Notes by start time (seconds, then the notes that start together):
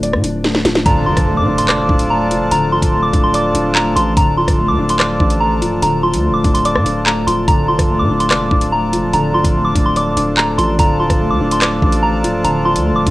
Already playing: D1 D3 F3 A3 D4 D5
0.03 D5, closed hi-hat
0.13 A2, cross-stick
0.24 D1 D4, closed hi-hat
0.44 A3, snare
0.55 snare
0.65 D1 F3, snare, closed hi-hat
0.75 snare
0.86 D1 D3 F3 D4 A4 A#5, kick, closed hi-hat, impact
1.06 F1 F3 C6
1.17 C1, kick, cross-stick, closed hi-hat
1.27 A3
1.37 A2 D6
1.48 D1 D4
1.58 C6, closed hi-hat
1.68 F1 D5 D6, cross-stick, clap, closed hi-hat
1.79 D1
1.89 D1 D4, kick
1.99 closed hi-hat
2.10 A3 A#5
2.31 F1 F3, closed hi-hat
2.41 D1
2.51 D1 D3 A#5, closed hi-hat
2.72 C1 F3 C6
2.82 D1, kick, closed hi-hat
2.93 A3
3.03 D6
3.13 D1 D4, kick, closed hi-hat
3.24 C6
3.34 D5 D6, closed hi-hat
3.55 D1 D4, closed hi-hat
3.75 A3 A#5, clap
3.96 A1 F3 C6, closed hi-hat
4.17 D1 D3 D4 A#5, kick, closed hi-hat
4.37 F3 C6
4.48 D1, kick, cross-stick, closed hi-hat
4.59 A3
4.68 D2 D6
4.79 D1 D4
4.89 C6, closed hi-hat
4.99 D5 D6, cross-stick, clap, closed hi-hat
5.20 A1 D4, kick
5.30 closed hi-hat
5.40 A3 A#5
5.62 C1 F3, closed hi-hat
5.82 D1 D3 A#5, closed hi-hat
6.03 F3 C6
6.13 D2, closed hi-hat
6.24 A3
6.29 D1
6.34 D6
6.44 D1 D4, kick, closed hi-hat
6.54 C6, closed hi-hat
6.65 D5 D6, closed hi-hat
6.75 A2, cross-stick
6.86 D1 D4, closed hi-hat
7.06 A3 A#5, clap
7.27 D1 F3 C6, closed hi-hat
7.48 D1 D3 A#5, kick, closed hi-hat
7.68 F1 F3 C6
7.79 C1, kick, cross-stick, closed hi-hat
7.89 A3
7.99 A2 D6
8.10 D1 D4
8.20 C6, closed hi-hat
8.31 F1 D5 D6, cross-stick, clap, closed hi-hat
8.41 D1
8.51 D1 D4, kick
8.61 closed hi-hat
8.72 A3 A#5
8.93 F1 F3, closed hi-hat
9.03 D1
9.13 D1 D3 A#5, closed hi-hat
9.34 C1 F3 C6
9.44 D1, kick, closed hi-hat
9.55 A3
9.65 D6
9.75 D1 D4, kick, closed hi-hat
9.86 C6
9.96 D5 D6, closed hi-hat
10.17 D1 D4, closed hi-hat
10.37 A3 A#5, clap
10.58 A1 F3 C6, closed hi-hat
10.79 D1 D3 F3 A4 A#5, kick, closed hi-hat
11.00 F3 C6
11.10 D1, kick, cross-stick, closed hi-hat
11.21 A3
11.30 D2 D6
11.41 D1 D4
11.51 C6, closed hi-hat
11.62 D5 D6, cross-stick, clap, closed hi-hat
11.82 A1 D4, kick
11.92 closed hi-hat
12.03 A3 A#5
12.24 C1 F3, closed hi-hat
12.44 D1 D3 A#5, closed hi-hat
12.65 F3 C6
12.75 D2, closed hi-hat
12.86 A3
12.91 D1
12.96 D6
13.06 D1 D4, kick, closed hi-hat